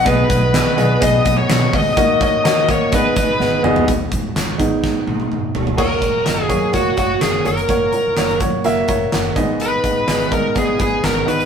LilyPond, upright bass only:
\new Staff \with { instrumentName = "Upright bass" } { \clef bass \time 4/4 \key gis \minor \tempo 4 = 126 b,,8 b,,8. r16 b,,8 b,,8 b,,8 b,,8 cis,8 | dis,8 dis,8. r16 dis,8 gis,,8 gis,,8 gis,,8 fis,,8 | gis,,8 gis,,8 gis,,8 gis,,8. r16 gis,,8 fis,,8 e,,8 | fis,,8 r16 fis,,16 fis,,8 fis,8 fis,,8 fis,,8 fis,,8 fis,,8 |
fis,,8 r16 fis,,16 fis,,8 fis,8 fis,,8 fis,,8 fis,,8 gis,,8~ | gis,,8 r16 gis,,16 gis,,8 gis,8 gis,,8 gis,,8 gis,,8 gis,,8 | }